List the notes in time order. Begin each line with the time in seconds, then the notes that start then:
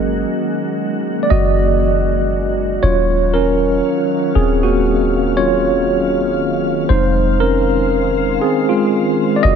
Already playing: F#1 D#3 F#3 G#3 A#3 C#4 F#4 G#4 A#4 D#5
1.23 D5
1.30 F#1 F#4 D#5
2.83 D#1 D#3 F#3 C#4 F4 C#5 F5
3.34 C#4 A#4
4.35 D#1 C4 G#4
4.63 A#3 F#4
5.37 F#3 C#4 F4 C#5
6.89 F1 G#3 C4 D#4 C5
7.40 C#4 A#4
8.41 C4 G#4
8.69 G#3 F4
9.36 D5
9.43 F1 F#4 D#5